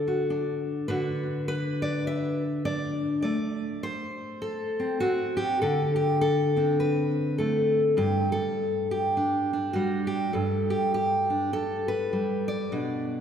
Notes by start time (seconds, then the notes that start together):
Already playing: D3 A4 D5
0.08 F#4
0.30 D4
0.88 D3 D4 F#4 B4
1.48 B4
1.82 D5
2.07 E5
2.65 D4 D5
3.22 A3 D5
3.83 C5
4.42 A4
4.80 C4
5.00 C4 F#4
5.37 G4
5.62 D3 A4
5.96 G4
6.21 A4
6.56 C4 D4
6.80 B4
7.38 A3 A4
7.97 G2 G4
8.32 A4
8.91 G4
9.17 D4
9.53 D4
9.73 G3 F#4
10.07 G4
10.33 G2 A4
10.70 G4
10.94 G4
11.30 D4
11.53 A4
11.88 B4
12.13 G3
12.48 D5
12.72 B2 D4